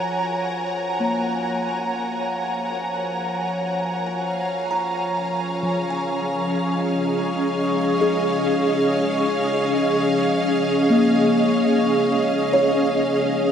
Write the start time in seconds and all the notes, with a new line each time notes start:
Already playing: F3 A#4 C#5 F#5 G#5 A#5
1.00 A#3
4.06 G#5
4.27 F5 F6
4.71 A#5
4.82 C#4
5.28 G#4
5.63 F3
5.90 G#5
6.27 D#5
8.01 G#4
10.90 A#3
12.53 C#5